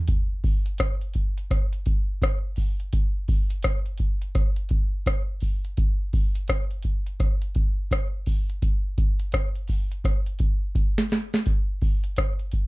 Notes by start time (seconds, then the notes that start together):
0.08 kick, closed hi-hat
0.44 kick, open hi-hat
0.66 closed hi-hat
0.78 kick, cross-stick, closed hi-hat
1.01 closed hi-hat
1.14 kick, closed hi-hat
1.38 closed hi-hat
1.51 kick, cross-stick, closed hi-hat
1.73 closed hi-hat
1.86 kick, closed hi-hat
2.22 kick, cross-stick, closed hi-hat
2.56 kick, open hi-hat
2.80 closed hi-hat
2.93 kick, closed hi-hat
3.28 kick, open hi-hat
3.50 closed hi-hat
3.63 kick, cross-stick, closed hi-hat
3.86 closed hi-hat
3.98 kick, closed hi-hat
4.22 closed hi-hat
4.35 kick, cross-stick, closed hi-hat
4.56 closed hi-hat
4.69 kick, closed hi-hat
5.06 kick, cross-stick, closed hi-hat
5.41 kick, open hi-hat
5.65 closed hi-hat
5.77 kick, closed hi-hat
6.13 kick, open hi-hat
6.35 closed hi-hat
6.48 kick, cross-stick, closed hi-hat
6.71 closed hi-hat
6.83 kick, closed hi-hat
7.06 closed hi-hat
7.20 kick, cross-stick, closed hi-hat
7.42 closed hi-hat
7.55 kick, closed hi-hat
7.91 kick, cross-stick, closed hi-hat
8.26 kick, open hi-hat
8.50 closed hi-hat
8.62 kick, closed hi-hat
8.98 kick, closed hi-hat
9.20 closed hi-hat
9.32 kick, cross-stick, closed hi-hat
9.55 closed hi-hat
9.68 kick, open hi-hat
9.91 closed hi-hat
10.04 kick, cross-stick, closed hi-hat
10.26 closed hi-hat
10.39 kick, closed hi-hat
10.75 kick, closed hi-hat
10.98 snare
11.10 snare, open hi-hat
11.33 snare, closed hi-hat
11.46 kick, closed hi-hat
11.81 kick, open hi-hat
12.04 closed hi-hat
12.16 kick, cross-stick, closed hi-hat
12.39 closed hi-hat
12.52 kick, closed hi-hat